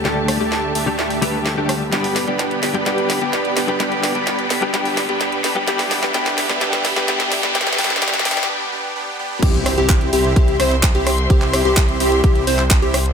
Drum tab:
CC |--------------------------------|--------------------------------|--------------------------------|--------------------------------|
HH |----o-------o-----o-o-------o---|x-o-o-x-x-x-o-x-x-x-o-x-x-x-o-x-|x-x-o-x-x-x-o-x-x-o-o-x-x-x-o-x-|x-o-o-x-x-x-o-x-x-x-o-x-x-x-o-x-|
CP |--------------------------------|--------------------------------|--------------------------------|--------------------------------|
SD |o---r---o-------o-------o---r---|o---o---o---o---o---o---o---o---|o---o---o---o---o---o---o---o---|o-o-o-o-o-o-o-o-o-o-o-o-o-o-o-o-|
BD |--------------------------------|--------------------------------|--------------------------------|--------------------------------|

CC |--------------------------------|x-------------------------------|--------------------------------|
HH |x-x-o---x-x-o-x-----------------|x-x-o-x-x-x-o---x-x-o-x-x-x-o-x-|x-x-o-x-x-x-o-x-x-x-o-x-x-x-o---|
CP |--------------------------------|--------x---------------x-------|--x-----x-------------x-x-------|
SD |oooooooooooooooo----------------|----r---------------r-------r---|----r-----------------------r---|
BD |--------------------------------|o-------o-------o-------o-------|o-------o-------o-------o-------|